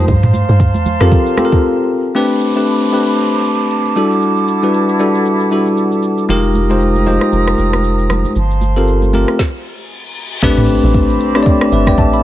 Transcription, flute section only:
0.00 1.92 C5 medium
0.08 1.86 F5 medium
0.08 1.88 A5 medium
0.08 1.84 C6 medium
2.15 3.94 C4 medium
2.15 6.25 A5 medium
2.15 3.94 B5 medium
2.15 6.25 D6 medium
3.96 6.26 E4 medium
3.96 6.26 A4 medium
3.96 6.26 F#5 medium
6.29 8.34 A#4 medium
6.29 8.34 G5 medium
6.29 8.34 A#5 medium
6.29 8.34 D#6 medium
8.36 9.38 C5 medium
8.36 9.38 F5 medium
8.36 9.38 A5 medium
8.36 9.38 C6 medium
10.42 12.22 C4 medium
10.42 12.23 A5 medium
10.42 12.22 B5 medium
10.42 12.23 D6 medium

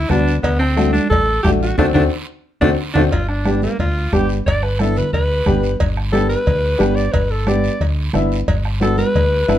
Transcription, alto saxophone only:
0.00 0.11 E4 medium
0.09 0.35 D4 loud
0.43 0.59 B3 loud
0.59 0.91 C4 loud
0.93 1.09 D4 loud
1.10 1.42 A4 loud
1.43 1.51 G4 loud
1.62 1.77 F#4 medium
1.78 1.86 D4 loud
1.94 2.02 D4 medium
2.61 2.69 D4 loud
2.94 3.02 D4 loud
3.12 3.28 F4 medium
3.29 3.61 D4 medium
3.63 3.79 A#3 medium
3.80 4.14 F4 medium
4.13 4.29 G4 medium
4.46 4.65 D5 loud
4.63 4.82 B4 medium
4.80 4.99 A4 medium
4.98 5.13 B4 medium
5.13 5.78 B4 loud
6.13 6.29 A4 loud
6.29 6.97 B4 loud
6.95 7.14 D5 medium
7.12 7.32 B4 medium
7.31 7.49 A4 medium
7.48 7.80 D5 loud
8.82 8.97 A4 medium
8.98 9.59 B4 loud

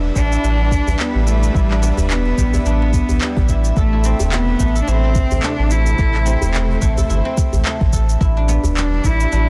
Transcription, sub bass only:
0.00 0.11 E1 medium
0.16 0.37 A1 medium
0.44 0.81 A1 medium
0.87 0.96 A1 medium
1.15 1.50 A1 medium
1.55 1.92 A1 loud
1.98 2.33 E1 medium
2.38 2.60 A1 medium
2.65 3.03 A1 medium
3.09 3.18 A1 medium
3.37 3.72 A1 loud
3.77 4.14 A1 medium
4.20 4.55 E1 medium
4.60 4.82 A1 medium
4.88 5.25 A1 medium
5.32 5.40 A1 medium
5.59 5.94 A1 medium
5.99 6.36 A1 loud
6.43 6.78 E1 medium
6.82 7.04 A1 medium
7.10 7.22 G1 medium
7.53 7.62 A1 medium
7.81 8.16 A1 medium
8.21 8.58 A1 loud
8.65 9.00 E1 medium
9.04 9.26 A1 medium
9.33 9.49 A1 medium

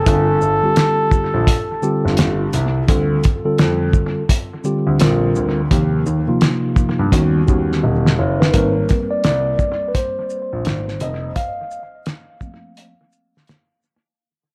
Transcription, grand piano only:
0.07 0.34 G1 loud
0.42 0.59 G1 medium
1.34 1.44 A#1 medium
2.05 2.15 G1 medium
2.18 2.46 G1 medium
2.54 2.81 C2 medium
2.89 3.16 D2 loud
3.60 3.87 F2 medium
4.87 5.00 D2 medium
5.01 5.28 A#1 loud
5.36 5.63 D2 medium
5.71 5.99 D#2 loud
6.07 6.23 D#2 medium
6.99 7.10 G2 medium
7.12 7.40 D#2 loud
7.49 7.76 D#2 loud
7.84 8.11 E1 medium
8.19 8.46 F#1 medium
8.54 8.81 G#1 loud
9.25 9.52 C2 medium
10.53 10.66 A#1 medium
10.66 10.93 G#1 medium
11.01 11.29 F1 medium

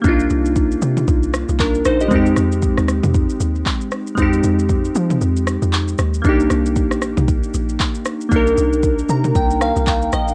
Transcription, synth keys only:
0.00 2.06 A#3 medium
0.00 1.31 D4 medium
0.00 2.01 G4 medium
0.06 1.32 D#4 medium
0.06 1.33 F4 medium
1.60 1.85 D4 medium
1.60 1.84 A#4 medium
1.86 2.00 D#4 medium
1.86 2.00 C5 medium
2.01 2.14 G4 medium
2.01 2.25 D#5 medium
2.08 4.12 G#3 medium
2.08 4.14 C4 medium
2.13 4.15 D#4 medium
2.13 4.16 G4 medium
4.15 6.19 G#3 medium
4.15 6.21 C4 medium
4.20 6.22 D#4 medium
4.20 6.23 G4 medium
6.22 8.26 A#3 medium
6.22 8.27 D4 medium
6.26 8.28 D#4 medium
6.26 8.30 G4 medium
8.29 10.33 A#3 medium
8.29 10.34 D4 medium
8.33 10.34 D#4 medium
8.33 10.34 A#4 medium
9.10 9.34 A#5 medium
9.36 9.60 G5 medium
9.62 9.85 F5 medium
9.87 10.11 G5 medium
10.13 10.34 D#5 medium

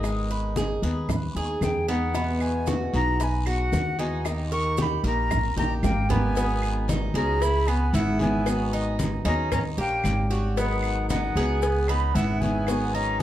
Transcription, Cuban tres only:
0.00 0.29 D#4 medium
0.31 0.56 B4 medium
0.57 0.82 G#4 medium
0.83 1.34 B4 medium
1.37 1.87 G#4 medium
1.88 2.14 B3 medium
2.15 2.66 B3 medium
2.67 3.19 F#4 medium
3.20 3.46 B4 medium
3.47 3.98 F#4 medium
3.99 4.50 D#4 medium
4.52 4.78 A#4 medium
4.78 5.04 G4 medium
5.04 5.55 A#4 medium
5.57 6.08 G4 medium
6.10 6.36 B3 medium
6.37 6.88 B3 medium
6.89 7.15 D#4 medium
7.15 7.66 G#4 medium
7.68 7.93 B3 medium
7.95 8.45 E4 medium
8.47 8.72 F#4 medium
8.73 9.24 D#4 medium
9.25 9.76 D#4 loud
9.78 10.29 G4 medium
10.31 10.56 F#4 medium
10.57 11.08 B3 medium
11.10 11.36 D#4 medium
11.37 11.88 G#4 medium
11.89 12.15 B3 medium
12.15 12.67 E4 medium
12.68 12.94 F#4 medium
12.95 13.22 D#4 medium

